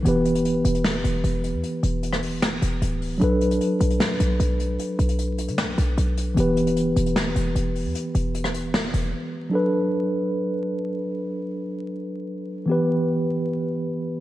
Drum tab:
HH |x-xxx-xx--x-x-x-|x-x-x-o-p-x-x-o-|x-xxx-xx--x-x-x-|x-xxx-xx--x-x-x-|
SD |--------o-------|-----r--o-------|--------o-------|--------o-------|

HH |x-xxx-xx--x-x-o-|x-x-x-x---x-----|----------------|----------------|
SD |--------o-------|-----r--o-------|----------------|----------------|

HH |----------------|
SD |----------------|